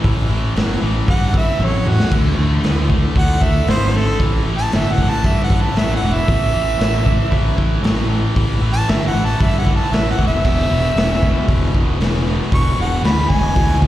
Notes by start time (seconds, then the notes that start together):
0.04 A1 A2 E3, kick, open hi-hat
0.29 A1 A2 E3
0.56 G1 A2 F#3, snare, open hi-hat
0.82 A1 A2 E3
1.07 G2 A2 E3 F#5, kick, open hi-hat
1.34 A2 E3 E5, kick
1.59 A1 A2 F#3, high tom
1.64 C#5
1.85 E2 A2 E3 F#4, mid tom
2.00 snare
2.11 D2 D3 A3, kick, open hi-hat, crash
2.37 D2 D3 A3
2.63 D2 D3 B3, snare, open hi-hat
2.90 D3 A3, kick
3.16 D2 D3 A3 F#5, kick, open hi-hat
3.41 D2 D3 A3 E5, kick
3.67 G#1 D3 B3 C5, snare, open hi-hat
3.95 D3 A3 A4
4.19 A1 A2 E3, kick, open hi-hat
4.46 A1 A2 E3
4.58 A5
4.72 G1 A2 F#3 E5, snare, open hi-hat
4.92 F#5
4.98 A1 A2 E3, kick
5.10 A5
5.24 G2 A2 E3 E5, kick, open hi-hat
5.44 F#5
5.50 A2 E3, kick
5.62 A5
5.76 A1 A2 F#3 E5, snare, open hi-hat
5.96 F#5
6.02 E1 A2 E3
6.13 E5
6.27 A1 A2 E3, kick, open hi-hat
6.53 A1 A2 E3
6.79 A1 A2 F#3, snare, open hi-hat
7.05 A2 E3, kick
7.31 A1 A2 E3, kick, open hi-hat
7.56 A1 A2 E3, kick
7.83 A1 A2 F#3, snare, open hi-hat
8.09 A2 E3
8.36 A1 A2 E3, kick, open hi-hat
8.62 A1 A2 E3
8.73 A5
8.88 G1 A2 F#3 E5, snare, open hi-hat
9.07 F#5
9.14 A1 A2 E3
9.25 A5
9.39 G2 A2 E3 E5, kick, open hi-hat
9.58 F#5
9.66 A2 E3, kick
9.76 A5
9.92 A1 A2 F#3 E5, snare, open hi-hat
10.11 F#5
10.18 E1 A2 E3, kick
10.27 E5
10.45 E1 E2 B2, kick, crash
10.70 E1 E2 B2
10.96 E1 E2 C#3, snare, open hi-hat
11.12 snare
11.22 E2 B2, kick
11.48 E1 E2 B2, kick, open hi-hat
11.74 E1 E2 B2, kick
12.00 E1 E2 C#3, snare, open hi-hat
12.26 E2 B2
12.51 E1 E2 B2 C#6, kick, open hi-hat
12.77 E1 E2 B2
12.81 F#5
13.03 D2 E2 C#3 B5, snare, open hi-hat
13.19 snare
13.29 E1 E2 B2 G#5, kick
13.55 D2 E2 B2, kick, open hi-hat
13.81 E2 B2, kick